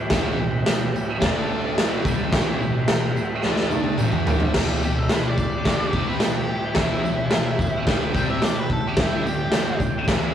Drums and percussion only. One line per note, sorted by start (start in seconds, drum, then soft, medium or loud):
0.10 kick loud
0.10 snare loud
0.10 tambourine medium
0.10 crash medium
0.66 snare loud
0.66 tambourine loud
0.66 crash medium
0.96 tambourine medium
1.22 kick loud
1.22 snare loud
1.22 crash medium
1.78 snare loud
1.78 tambourine loud
1.78 crash medium
2.05 kick loud
2.05 tambourine medium
2.33 kick loud
2.33 snare loud
2.33 tambourine medium
2.33 crash medium
2.62 tambourine soft
2.88 snare loud
2.88 tambourine loud
2.88 crash medium
3.17 tambourine medium
3.43 snare medium
3.43 tambourine soft
3.56 snare medium
3.70 high tom medium
3.70 tambourine medium
3.84 high tom medium
3.98 mid tom medium
3.98 tambourine medium
4.12 mid tom medium
4.27 floor tom loud
4.27 tambourine medium
4.40 floor tom medium
4.54 kick loud
4.54 snare loud
4.54 crash loud
4.54 crash medium
4.83 tambourine medium
5.09 snare loud
5.09 tambourine medium
5.09 crash medium
5.38 kick medium
5.38 tambourine medium
5.65 kick loud
5.65 snare loud
5.65 tambourine medium
5.65 crash medium
5.93 kick medium
6.20 snare loud
6.20 tambourine medium
6.20 crash medium
6.75 kick loud
6.75 snare loud
6.75 crash medium
7.05 tambourine medium
7.31 snare loud
7.31 tambourine medium
7.31 crash medium
7.59 kick medium
7.59 tambourine medium
7.87 kick loud
7.87 snare loud
7.87 tambourine medium
7.87 crash medium
8.15 kick medium
8.15 tambourine medium
8.42 snare loud
8.42 tambourine loud
8.42 crash soft
8.70 kick medium
8.97 kick loud
8.97 snare loud
8.97 tambourine soft
8.97 crash medium
9.27 tambourine medium
9.52 snare loud
9.52 tambourine loud
9.52 crash medium
9.80 kick medium
9.80 tambourine medium
10.08 kick loud
10.08 snare loud
10.08 tambourine medium
10.08 crash medium